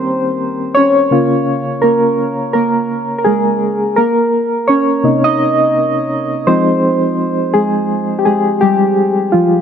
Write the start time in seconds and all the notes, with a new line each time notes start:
Already playing: D#3 G3 A#3 C4 C#4 G4 A#4 C5
0.75 C#4 C#5
1.11 C#3 A#3 F4
1.82 A#3 A#4
2.53 A#3 A#4
3.18 A#4
3.24 G#3 G#4
3.96 A#3 A#4
4.68 C#4 C#5
5.03 C3 A#3 D#4
5.24 D#4 D#5
6.47 F3 G#3 C4 D#4 C5
7.54 G#3 G#4
8.19 G4
8.25 G#3 G#4
8.61 G3 G4
9.32 F3 F4